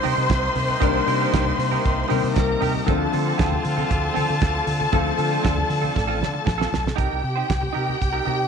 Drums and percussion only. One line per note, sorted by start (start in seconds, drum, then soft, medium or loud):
0.03 open hi-hat medium
0.03 high conga medium
0.29 kick loud
0.29 snare loud
0.29 closed hi-hat medium
0.55 open hi-hat medium
0.55 high conga medium
0.55 low conga medium
0.69 high conga medium
0.81 kick loud
0.81 closed hi-hat medium
0.81 muted conga soft
1.07 open hi-hat medium
1.07 muted conga soft
1.32 kick loud
1.32 snare loud
1.32 closed hi-hat medium
1.32 muted conga soft
1.46 high conga medium
1.46 low conga medium
1.60 open hi-hat medium
1.72 high conga medium
1.85 kick loud
1.85 closed hi-hat medium
1.85 muted conga soft
2.10 open hi-hat medium
2.10 high conga medium
2.36 kick loud
2.36 snare loud
2.36 closed hi-hat medium
2.62 open hi-hat medium
2.62 high conga medium
2.62 low conga medium
2.76 high conga medium
2.87 kick loud
2.87 closed hi-hat medium
2.87 muted conga soft
3.13 open hi-hat medium
3.13 muted conga soft
3.39 kick loud
3.39 snare loud
3.39 closed hi-hat medium
3.39 muted conga soft
3.52 high conga medium
3.52 low conga medium
3.65 open hi-hat medium
3.78 high conga medium
3.90 kick loud
3.90 closed hi-hat medium
3.90 muted conga soft
4.16 open hi-hat medium
4.16 muted conga soft
4.16 high conga medium
4.41 kick loud
4.41 snare loud
4.41 closed hi-hat medium
4.41 muted conga soft
4.67 open hi-hat medium
4.67 muted conga soft
4.67 high conga soft
4.67 low conga medium
4.81 high conga medium
4.93 kick loud
4.93 closed hi-hat medium
5.18 open hi-hat medium
5.45 kick loud
5.45 snare loud
5.45 closed hi-hat medium
5.45 muted conga soft
5.58 high conga medium
5.58 low conga medium
5.70 open hi-hat medium
5.84 high conga medium
5.96 kick loud
5.96 snare medium
5.96 muted conga soft
6.22 snare medium
6.22 high conga medium
6.47 kick loud
6.47 snare medium
6.61 snare medium
6.72 snare loud
6.72 muted conga soft
6.72 high conga soft
6.72 low conga medium
6.86 snare medium
6.86 high conga medium
6.98 kick loud
6.98 closed hi-hat medium
7.50 kick loud
7.50 snare loud
7.50 closed hi-hat medium
7.63 high conga medium
7.63 low conga medium
7.76 muted conga soft
7.89 high conga medium
8.02 kick medium
8.02 closed hi-hat medium
8.28 muted conga soft
8.28 high conga medium